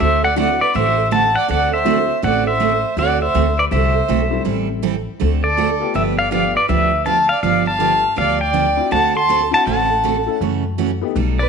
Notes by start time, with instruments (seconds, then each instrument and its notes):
0.00 upright bass D2, steel-string acoustic guitar D3 A3 C4 F#4 A4, fiddle C5, pedal steel guitar E5
0.24 fiddle D5, pedal steel guitar F#5
0.36 steel-string acoustic guitar D3 A3 C4 F#4 A4, upright piano F#3 C4 D4 E4, fiddle D5, pedal steel guitar F#5
0.61 fiddle B4, pedal steel guitar D5
0.74 upright bass A1, steel-string acoustic guitar D3 A3 C4 F#4 A4, fiddle C5, pedal steel guitar E5
1.11 steel-string acoustic guitar D3 A3 C4 F#4 A4, fiddle F#5, pedal steel guitar A5
1.35 fiddle D5, pedal steel guitar F#5
1.48 upright bass D2, steel-string acoustic guitar D3 A3 C4 F#4 A4, fiddle D5, pedal steel guitar F#5
1.74 fiddle C5, pedal steel guitar E5
1.85 steel-string acoustic guitar D3 A3 C4 F#4 A4, upright piano F#3 C4 D4 E4
2.22 upright bass A1, steel-string acoustic guitar D3 A3 C4 F#4 A4, fiddle D5, pedal steel guitar F#5
2.47 fiddle C5, pedal steel guitar E5
2.60 steel-string acoustic guitar D3 A3 C4 F#4 A4
2.97 upright bass D2, steel-string acoustic guitar D3 A3 C4 F#4 A4, fiddle D5, pedal steel guitar F#5
3.22 fiddle C5, pedal steel guitar E5
3.35 upright bass D2, steel-string acoustic guitar D3 A3 C4 F#4 A4
3.59 fiddle B4, pedal steel guitar D5
3.71 upright bass C2, steel-string acoustic guitar D3 A3 C4 F#4 A4, fiddle C5, pedal steel guitar E5
4.08 upright bass B1, steel-string acoustic guitar D3 A3 C4 F#4 A4
4.30 upright piano G3 A3 C4 E4
4.45 upright bass A1, steel-string acoustic guitar E3 G3 C4 E4 A4
4.82 steel-string acoustic guitar E3 G3 C4 E4 A4
5.20 upright bass D2, steel-string acoustic guitar D3 A3 C4 F#4 A4
5.44 fiddle A4, pedal steel guitar D5
5.57 steel-string acoustic guitar D3 A3 C4 F#4 A4
5.80 upright piano A3 B3 F4 G4
5.94 upright bass G1, steel-string acoustic guitar D3 F3 B3 D4 G4, fiddle B4, pedal steel guitar E5
6.19 fiddle D5, pedal steel guitar F5
6.31 steel-string acoustic guitar D3 F3 B3 D4 G4, upright piano A3 B3 F4 G4, fiddle D5, pedal steel guitar F5
6.56 fiddle B4, pedal steel guitar D5
6.69 upright bass D2, steel-string acoustic guitar D3 F3 B3 D4 G4, fiddle B4, pedal steel guitar E5
7.05 steel-string acoustic guitar D3 F3 B3 D4 G4, fiddle F5, pedal steel guitar A5
7.29 fiddle D5, pedal steel guitar F5
7.43 upright bass G1, steel-string acoustic guitar D3 F3 B3 D4 G4, fiddle D5, pedal steel guitar F5
7.67 fiddle F5, pedal steel guitar A5
7.79 steel-string acoustic guitar D3 F3 B3 D4 G4, upright piano A3 B3 F4 G4
8.16 upright bass D2, steel-string acoustic guitar D3 F3 B3 D4 G4, fiddle D5, pedal steel guitar F5
8.41 fiddle D5, pedal steel guitar G5
8.53 steel-string acoustic guitar D3 F3 B3 D4 G4
8.77 upright piano C4 D4 E4 F#4
8.91 upright bass D2, steel-string acoustic guitar D3 A3 C4 F#4 A4, fiddle F#5, pedal steel guitar A5
9.16 fiddle A5, pedal steel guitar C6
9.29 steel-string acoustic guitar D3 A3 C4 F#4 A4
9.51 upright piano C4 D4 E4 F#4, fiddle F#5, pedal steel guitar A5
9.66 upright bass A1, steel-string acoustic guitar D3 A3 C4 F#4 A4, fiddle F#5, pedal steel guitar A5
10.04 steel-string acoustic guitar D3 A3 C4 F#4 A4
10.26 upright piano A3 C#4 E4 A4
10.41 upright bass F#2, steel-string acoustic guitar C#3 E3 A3 C#4 F#4
10.78 steel-string acoustic guitar C#3 E3 A3 C#4 F#4
11.01 upright piano A3 B3 D#4 G4
11.15 upright bass B1, steel-string acoustic guitar B2 G3 A3 D#4 A4
11.39 fiddle B4, pedal steel guitar D5